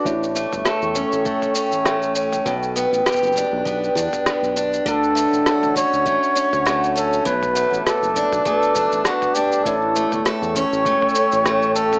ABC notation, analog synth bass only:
X:1
M:4/4
L:1/16
Q:"Swing 16ths" 1/4=100
K:Amix
V:1 name="Analog synth bass" clef=bass
A,,,3 G,,, z E,,2 A,,, E,,, z2 A,,,4- A,,, | B,,,3 A,,, z F,,,2 B,,, B,,,2 E,, z2 B,,,3 | D,,3 A,,, z A,,,2 D,, A,,, z2 D,,4- D,, | B,,,3 A,,, z F,,,2 B,,, z2 F,,, A,,, z4 |
A,,,3 G,,, z E,,2 A,,, E,,, z2 A,,,4- A,,, |]